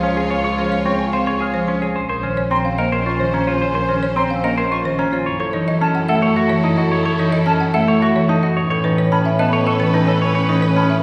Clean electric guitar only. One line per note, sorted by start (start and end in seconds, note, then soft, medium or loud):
0.03 0.21 C#4 medium
0.17 0.35 G#4 medium
0.30 0.43 C#5 soft
0.44 0.63 C#5 medium
0.58 0.76 C#4 medium
0.85 1.04 C4 medium
1.13 1.27 C5 medium
1.27 1.45 C#5 medium
1.41 1.59 G#4 medium
1.68 1.86 C#4 medium
1.82 2.00 G#4 medium
1.96 2.08 C5 medium
2.09 2.28 C5 medium
2.23 2.41 C#4 medium
2.51 2.69 C4 medium
2.79 2.92 A#4 medium
2.92 3.10 C5 medium
3.06 3.24 F4 medium
3.34 3.52 C#4 medium
3.47 3.65 F4 medium
3.61 3.74 C5 medium
3.75 3.93 C5 medium
3.89 4.07 C#4 medium
4.16 4.34 C4 medium
4.44 4.57 A#4 medium
4.58 4.75 C5 medium
4.71 4.89 F4 medium
4.99 5.17 C#4 medium
5.12 5.31 F4 medium
5.26 5.39 C#5 medium
5.40 5.58 C#5 medium
5.54 5.72 D#4 medium
5.81 5.99 C#4 medium
6.09 6.22 A4 medium
6.22 6.41 C#5 medium
6.36 6.54 F#4 medium
6.64 6.82 D#4 medium
6.78 6.96 F#4 medium
6.92 7.04 C#5 medium
7.05 7.23 C#5 medium
7.19 7.37 D#4 medium
7.47 7.65 C#4 medium
7.74 7.88 A4 medium
7.88 8.06 C#5 medium
8.02 8.20 F#4 medium
8.29 8.47 D#4 medium
8.43 8.61 F#4 medium
8.57 8.69 C#5 medium
8.70 8.88 C#5 medium
8.84 9.02 D#4 medium
9.12 9.30 C#4 medium
9.39 9.53 B4 medium
9.53 9.66 C#5 medium
9.67 9.85 A4 medium
9.94 10.12 D#4 medium
10.08 10.21 A4 medium
10.22 10.34 C#5 medium
10.35 10.53 C#5 medium
10.49 10.67 D#4 medium
10.76 10.95 C#4 medium